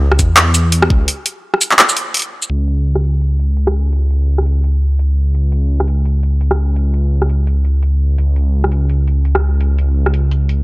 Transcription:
Already playing: C#2
0.12 cross-stick
0.19 E2, kick, closed hi-hat, shaker
0.37 clap, closed hi-hat
0.54 closed hi-hat, shaker
0.72 closed hi-hat
0.82 cross-stick
0.90 C#2, kick
1.08 closed hi-hat
1.26 closed hi-hat
1.54 cross-stick
1.61 closed hi-hat, shaker
1.71 clap
1.79 clap, closed hi-hat
1.89 shaker
1.97 closed hi-hat
2.14 closed hi-hat
2.17 closed hi-hat
2.19 closed hi-hat
2.22 closed hi-hat
2.42 shaker
2.50 C#2, closed hi-hat
2.68 closed hi-hat
2.95 cross-stick
3.03 closed hi-hat
3.21 closed hi-hat
3.39 closed hi-hat
3.57 closed hi-hat
3.67 cross-stick
3.93 closed hi-hat
4.11 closed hi-hat
4.38 cross-stick
4.46 closed hi-hat
4.64 closed hi-hat
4.99 closed hi-hat
5.35 closed hi-hat
5.52 closed hi-hat
5.80 cross-stick
5.88 closed hi-hat
6.05 closed hi-hat
6.23 closed hi-hat
6.41 closed hi-hat
6.51 cross-stick
6.76 closed hi-hat
6.94 closed hi-hat
7.22 cross-stick
7.29 closed hi-hat
7.47 closed hi-hat
7.65 closed hi-hat
7.83 closed hi-hat
8.18 C#2, closed hi-hat
8.36 closed hi-hat
8.64 cross-stick
8.72 closed hi-hat
8.90 closed hi-hat
9.08 closed hi-hat
9.25 closed hi-hat
9.35 cross-stick
9.61 closed hi-hat
9.78 closed hi-hat
10.06 cross-stick
10.14 closed hi-hat
10.31 closed hi-hat
10.49 closed hi-hat

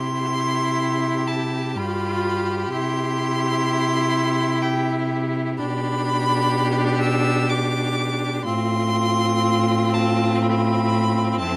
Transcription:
Already playing: C3 E4 G4 C6
1.27 A5
1.76 G2 F4 B5
2.72 C3 E4 C6
4.62 G5
5.57 B2 D4 G4 B5
7.00 E6
7.49 D6
8.45 A2 C4 F4 C6
9.93 A5
10.42 B5
11.39 F2 E4 A5

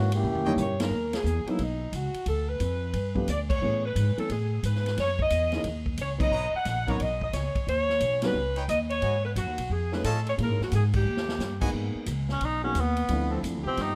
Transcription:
Already playing: G#2 E3 A#3 C#4 F#4
0.12 A#3 C#4 E4 G4, ride
0.23 D#2, mid tom
0.35 floor tom
0.45 E3 G3 A#3 C#4 D#4 E4 C#5 D#5 G5, floor tom
0.57 G2 C#5, hi-hat pedal, mid tom
0.79 F#3 G#3 A#3 B3 D#4 A#4, snare, ride
0.90 D#2
1.13 G#4, snare, ride
1.24 E2, hi-hat pedal
1.45 F#3 G#3 A#3 B3 D#4 E4, muted upright bass stroke, ride
1.59 B1 D#4, kick, ride
1.92 C#2 F#4, kick, hi-hat pedal, ride
2.14 muted upright bass stroke, ride
2.26 D2 A4, kick, ride
2.49 B4
2.60 F2, kick, hi-hat pedal, ride
2.93 G2, kick, ride
3.15 F3 A3 B3 D4 G4, kick
3.28 D2 D5, kick, hi-hat pedal, ride
3.49 C#5, kick, crash
3.62 A2 E3 A3 B3 C#4 G#4
3.86 B4
3.96 G#2, kick, hi-hat pedal, ride
4.17 E3 A3 B3 C#4 A4, muted upright bass stroke, ride
4.30 A2 G#4, kick, ride
4.63 G#2 B4, kick, hi-hat pedal, ride
4.75 snare
4.86 snare, ride
4.97 F#2 C#5, kick, snare, ride
5.19 D#5, kick
5.30 E2, kick, hi-hat pedal, ride
5.52 E3 A#3 C#4 D#4 G#4, snare, ride
5.64 D#2, kick, ride
5.86 kick
5.97 C#2 C#5, kick, hi-hat pedal, ride
6.18 F#3 B3 C#4 D#4 B4 D#5, kick, crash
6.31 B1 D#4 B4 C#5 A#5
6.53 F#5, muted upright bass stroke
6.65 A#1, kick, snare, hi-hat pedal, ride
6.87 F#3 B3 C#4 D#4 A#4 B4 C#5 A#5, kick, ride
7.00 B1 D#5, kick, ride
7.21 D#5, kick
7.33 C#2 C#5, kick, snare, hi-hat pedal, ride
7.55 muted upright bass stroke, kick, ride
7.67 D#2 C#5, kick, ride
7.89 snare
8.00 B1, kick, hi-hat pedal, ride
8.22 G3 B3 C#4 D#4 F#4 B4, snare, ride
8.34 C#2
8.56 D#4 B4 C#5 G5, ride
8.68 D#2 D#5, kick, hi-hat pedal, ride
8.90 C#5, ride
9.02 G#2 F#4 B4 D#5 G#5, kick, ride
9.25 B4
9.36 F#2 F#4, kick, hi-hat pedal, ride
9.46 D#2
9.58 B1, ride
9.70 F2 G#4, kick
9.92 F3 A3 C#4 D#4 G#4 B4, snare
10.04 A2 F4 A4 C#5 D#5 A5, kick, hi-hat pedal, ride
10.27 C#5, ride
10.37 A#2 G#3 A#3 C#4 E4 G#4, kick, ride
10.42 A#4
10.48 G#2
10.60 E2 F#4, snare
10.72 G#2 G#4, kick, hi-hat pedal, ride
10.93 G4, kick, crash
11.05 D#2
11.17 snare
11.29 snare
11.39 G2, snare, hi-hat pedal
11.61 G#3 A#3 B3 D#4 F#4 G#4 B4 D#5 G#5, kick, crash
11.73 G#2, kick
11.95 muted upright bass stroke
12.06 C#2, kick, hi-hat pedal, ride
12.29 C#4, snare
12.41 B1 D#4, kick, ride
12.63 F#3 G#3 A#3 B3 C#4 D#4 F#4 G#4
12.75 D#2, kick, hi-hat pedal, ride
12.80 B3
12.97 ride
13.09 D2 F3 A3 C4 D4 E4, kick, ride
13.31 F3 C4 D4 A4
13.43 F2, kick, hi-hat pedal, ride
13.54 D2
13.63 C2 F3 A3 B3 C4 G4
13.77 G2, kick, snare, ride
13.81 D#4

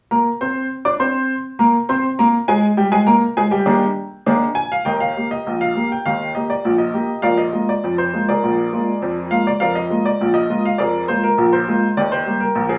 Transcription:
0.11 A#3 A#4 A#5
0.41 C4 C5 C6
0.85 D4 D5 D6
1.00 C4 C5 C6
1.59 A#3 A#4 A#5
1.89 C4 C5 C6
2.19 A#3 A#4 A#5
2.48 G#3 G#4 G#5
2.77 G3 G4 G5
2.92 G#3 G#4 G#5
3.07 A#3 A#4 A#5
3.37 G#3 G#4 G#5
3.51 G3 G4 G5
3.66 D#3 A#3 D4 G#4
4.26 D#3 A#3 D4 G#4
4.55 G#5
4.72 F5
4.85 D#2 D#3 A#4 D#5 G5
5.00 F5
5.17 A#3 G4
5.31 D#5
5.47 A#1 A#2
5.61 F5
5.76 A#3 G4
5.92 G5
6.06 D#2 D#3 F5
6.35 A#3 G4 D#5
6.50 D5
6.65 A#1 A#2
6.78 D#5
6.94 A#3 G4
7.22 A#1 A#2 A#4 D5 F5
7.38 D#5
7.53 G#3 A#3 F4
7.69 D5
7.84 F2 F3
7.98 C5
8.13 G#3 A#3 F4
8.29 G#4 A#4 D5
8.43 A#1 A#2
8.73 G#3 A#3 F4
9.02 F2 F3
9.31 G#3 A#3 F4 F5
9.47 D5
9.60 F2 F3 A#4 D5 F5
9.75 D#5
9.90 G#3 A#3 F4
10.06 D5
10.21 A#1 A#2
10.34 D#5
10.50 G#3 A#3 F4
10.65 F5
10.78 F2 F3 G#4 A#4 D5
11.08 G#3 A#3 F4 C5
11.24 A#4
11.38 A#1 A#2
11.53 C5
11.68 G#3 A#3 F4
11.97 D#2 D#3 D5
12.12 C5
12.27 G3 A#3 G4
12.40 A#4
12.55 A#1 A#2
12.69 G#4

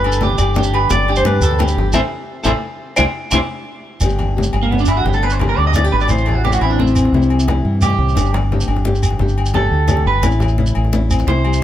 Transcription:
Already playing: G1 G2 B4
0.04 D4 A4, low agogo
0.12 low conga, shekere
0.21 D3 G4, high conga, shekere
0.29 low conga
0.38 G1 G4 D5, low agogo, shekere
0.54 G2 D4 G4, high conga, low conga, shekere
0.63 shekere
0.74 G4 B4, low agogo
0.90 G1 G2 D5, high conga, low conga, shekere
1.08 D4 G4, low agogo
1.16 C5, low conga, shekere
1.24 G2 D3 B4, high conga, low agogo
1.34 low conga
1.40 D2 G4 A4, shekere
1.51 low conga
1.59 G2 D4 G4, high conga, low agogo, shekere
1.68 shekere
1.77 G1 G4, low conga
1.93 A1 A3 C4 E4 A4 C5 E5, high conga, low agogo, shekere
2.43 A1 A3 C4 E4 A4 C5 E5, high conga, low agogo, shekere
2.96 C2 C4 D4 E4 G4 C5 D5 E5, high conga, low agogo, shekere
3.31 C2 C4 D4 E4 G4 C5 D5 E5, high conga, low agogo, shekere
4.00 G1 G2 D3 B3 D4 G4, high conga, low agogo, shekere
4.09 low conga, shekere
4.19 B3, low conga, low agogo
4.29 low conga
4.36 D3 G4, high conga
4.43 shekere
4.53 G1, muted clean electric guitar stroke, muted nylon-string guitar stroke, low agogo
4.62 A#3 D4, low conga
4.71 G2 B3, high conga
4.78 D4, shekere
4.85 E4, low agogo, shekere
4.90 D4
4.97 F#4, low conga
5.05 G1 G2 D4 G4, high conga
5.13 A4, shekere
5.23 B3 B4, low conga, low agogo
5.30 C5, shekere
5.39 D3 G4, muted clean electric guitar stroke, high conga, low conga, low agogo
5.49 C5
5.58 D2 D4 D5, low conga
5.67 D#5
5.73 G2 E4 D5, high conga, low agogo, shekere
5.84 G4, low conga
5.92 G#1 D4 B4
6.00 D5, shekere
6.08 A1 A2 E4 C5, high conga, low agogo, shekere
6.18 low conga, shekere
6.26 A3 A4, low conga, low agogo
6.35 F#4, low conga
6.45 E3 E4 G4, high conga
6.52 F#4, shekere
6.61 A1 C4 E4, low agogo
6.70 D4, low conga
6.79 C4 E4, high conga
6.87 shekere
6.95 C4, low agogo, shekere
7.05 low conga
7.12 C2 C3 E4, high conga
7.22 shekere
7.30 G3, low conga, low agogo
7.40 shekere
7.48 E3 E4, high conga, low conga, low agogo
7.65 G2 C3, low conga
7.75 low conga
7.81 B2 G4, high conga, low agogo, shekere
7.90 low conga
7.98 C2 A2
8.09 shekere
8.15 G1 G2 D4, high conga, low agogo, shekere
8.26 low conga, shekere
8.34 B3, muted clean electric guitar stroke, low conga, low agogo
8.43 low conga
8.52 D3 G4, high conga
8.61 shekere
8.68 G1 D4, low agogo
8.76 low conga
8.85 G2 G4, high conga
8.95 shekere
9.03 muted nylon-string guitar stroke, low agogo, shekere
9.10 low conga
9.19 G1 G2 G4, high conga
9.28 shekere
9.37 muted nylon-string guitar stroke, low conga, low agogo
9.46 shekere
9.54 D3 G4 A4, high conga, low conga, low agogo
9.71 D2 D4, low conga
9.80 low conga
9.88 G2 G4, high conga, low agogo, shekere
9.97 low conga
10.06 G1 D4 B4
10.23 A1 A2 E4, high conga, low agogo, shekere
10.31 low conga, shekere
10.40 A3, low conga, low agogo, shekere
10.48 shekere
10.58 E3 E4, high conga
10.66 shekere
10.75 A1, low conga, low agogo
10.85 low conga
10.93 E2 E4, high conga, low conga, shekere
11.10 C4, low conga, low agogo, shekere
11.19 low conga, shekere
11.27 C2 C3 E4 C5, high conga
11.45 G3, low agogo
11.53 shekere

